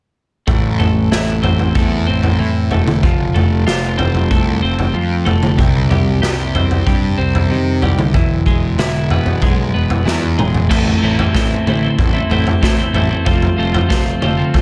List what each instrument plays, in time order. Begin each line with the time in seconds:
0.47 picked electric bass A1, clean electric guitar A2, kick, floor tom
0.79 clean electric guitar A3, floor tom
1.11 picked electric bass A1, clean electric guitar E4, snare
1.43 clean electric guitar C4, floor tom
1.59 floor tom
1.75 picked electric bass E2, clean electric guitar A3, kick, floor tom
2.07 picked electric bass A1, clean electric guitar C4
2.23 floor tom
2.39 picked electric bass A2, clean electric guitar E3
2.71 picked electric bass E1, clean electric guitar A3, floor tom
2.88 mid tom
3.03 picked electric bass F1, clean electric guitar F3, kick, floor tom
3.35 clean electric guitar A3, floor tom
3.67 picked electric bass F1, clean electric guitar F4, snare
3.98 clean electric guitar C4, floor tom
4.15 floor tom
4.31 picked electric bass C2, clean electric guitar A3, kick, floor tom
4.62 picked electric bass F1, clean electric guitar C4
4.79 floor tom
4.94 picked electric bass F2, clean electric guitar F3
5.25 picked electric bass F1, clean electric guitar A3, floor tom
5.43 mid tom
5.57 picked electric bass C2, clean electric guitar C3, kick, floor tom
5.90 clean electric guitar G3, floor tom
6.22 picked electric bass C2, clean electric guitar G4, snare
6.55 clean electric guitar C4, floor tom
6.71 floor tom
6.87 picked electric bass G2, clean electric guitar G3, kick, floor tom
7.18 picked electric bass C2, clean electric guitar C4
7.35 floor tom
7.51 picked electric bass C3, clean electric guitar D#3
7.82 picked electric bass C2, clean electric guitar G3, floor tom
7.99 mid tom
8.14 picked electric bass E1, clean electric guitar E3, kick, floor tom
8.46 clean electric guitar G#3, kick
8.78 picked electric bass E1, clean electric guitar E4, snare, mid tom
9.10 clean electric guitar B3, floor tom
9.26 floor tom
9.42 picked electric bass B1, clean electric guitar G#3, kick, floor tom
9.74 picked electric bass E1, clean electric guitar B3
9.90 floor tom
10.06 picked electric bass E2, clean electric guitar E3, snare
10.38 picked electric bass E1, clean electric guitar G#3, mid tom
10.54 floor tom
10.69 picked electric bass A1, clean electric guitar A2 E3 A3 C4 E4, kick, floor tom, crash
10.87 floor tom
11.02 picked electric bass A1, clean electric guitar E3 A3 C4 E4
11.18 clean electric guitar A3 C4 E4, floor tom
11.34 picked electric bass A1, clean electric guitar A2 E3 A3 C4 E4, kick, snare
11.66 picked electric bass A1, clean electric guitar E3 A3 C4 E4, mid tom
11.82 clean electric guitar A3 C4 E4
11.99 picked electric bass A1, kick, floor tom
12.13 clean electric guitar A3 C4 E4
12.30 picked electric bass A1, clean electric guitar E3 A3 C4 E4, floor tom
12.47 floor tom
12.61 picked electric bass A1, clean electric guitar A2 E3 A3 C4 E4, kick, snare
12.78 clean electric guitar A3 C4 E4
12.93 picked electric bass A1, clean electric guitar E3 A3 C4 E4, floor tom
13.09 clean electric guitar A3 C4 E4
13.25 picked electric bass F1, clean electric guitar F3 A3 C4 F4, kick, floor tom
13.42 floor tom
13.57 picked electric bass F1, clean electric guitar F3 A3 C4 F4
13.73 clean electric guitar A3 C4 F4, floor tom
13.89 picked electric bass F1, clean electric guitar F3 A3 C4 F4, kick, snare
14.21 picked electric bass F1, clean electric guitar F3 A3 C4 F4, mid tom
14.37 clean electric guitar A3 C4 F4
14.54 picked electric bass F1, kick, floor tom